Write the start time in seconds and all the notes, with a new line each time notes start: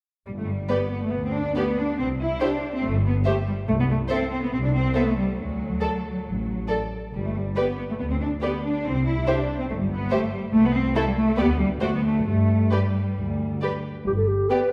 0.27 G1 G3
0.39 A3
0.49 G3
0.70 B3 G4 B4 D5
0.92 B3
1.03 A3
1.13 D2 B3
1.26 C4
1.35 D4
1.56 B3 G4 B4 D5
1.78 D4
1.99 C2 C4
2.20 E4
2.41 D4 G4 C5 E5
2.74 C4
2.84 G1 A3
2.95 G3
3.05 B3
3.25 A3 G4 C5 E5
3.47 G3
3.68 C2 A3
3.80 B3
3.89 A3
4.09 C4 A4 C5 E5
4.31 C4
4.42 B3
4.52 C2 C4
4.64 D4
4.74 C4
4.95 B3 A4 C5 E5
5.08 A3
5.17 G3
5.38 D2 F#3
5.82 A4 D5
6.26 A1
6.69 A4 D5
7.14 G1 G3
7.26 A3
7.36 G3
7.56 B3 G4 B4 D5
7.78 B3
7.90 A3
8.00 D2 B3
8.11 C4
8.21 D4
8.42 B3 G4 B4 D5
8.64 D4
8.85 C2 C4
9.06 E4
9.27 D4 G4 C5 E5
9.60 C4
9.69 G1 A3
9.81 G3
9.91 B3
10.11 A3 G4 C5 E5
10.33 G3
10.53 C2 A3
10.65 B3
10.74 C4
10.95 A3 E4 A4 E5
11.07 G3
11.16 A3
11.37 D2 B3 G4 B4 D5
11.59 G3
11.81 D2 A3 F#4 C5 D5
11.93 B3
12.04 A3
12.26 G2 A3
12.71 G3 G4 B4 D5
13.18 D2
13.61 G4 B4 D5
14.07 G1 G2 G4
14.17 A4
14.28 G4
14.49 B3 G4 B4 D5